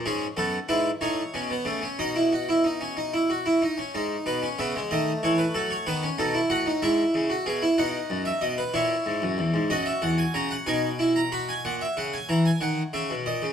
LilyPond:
<<
  \new Staff \with { instrumentName = "Harpsichord" } { \time 6/8 \key e \major \tempo 4. = 62 << { gis'8 a'8 b'8 cis''4. | dis''2~ dis''8 r8 | r8 b'8 e''8 dis''8 cis''16 b'16 a'16 cis''16 | b'8 a'8 fis''8 e''4. |
fis''8. e''16 dis''16 b'16 cis''4. | dis''16 e''16 fis''16 gis''16 ais''16 fis''16 gis''8. ais''16 b''16 gis''16 | fis''16 e''16 fis''16 gis''16 ais''16 gis''16 fis''8 e''8 dis''8 | } \\ { cis'8 b8 e'8 dis'8 cis'16 b16 a16 cis'16 | dis'16 e'16 fis'16 e'16 dis'16 cis'16 dis'16 e'16 fis'16 e'16 dis'16 cis'16 | dis'8. cis'16 b16 gis16 a4. | b16 cis'16 dis'16 e'16 fis'16 dis'16 e'8. fis'16 gis'16 e'16 |
dis'4. e'4. | fis'4. dis'8 e'8 fis'8 | r2. | } >> }
  \new Staff \with { instrumentName = "Harpsichord" } { \clef bass \time 6/8 \key e \major gis,8 fis,8 gis,8 a,8 b,8 cis8 | b,2~ b,8 r8 | gis,8 b,8 cis8 dis8 e8 fis8 | dis8 b,8 a,8 gis,8 cis8 b,8 |
b,8 fis,8 b,8 ais,8 gis,16 fis,16 e,16 gis,16 | fis,8 e,8 cis8 b,4. | ais,8 cis8 e8 dis8 cis16 b,16 ais,16 cis16 | }
>>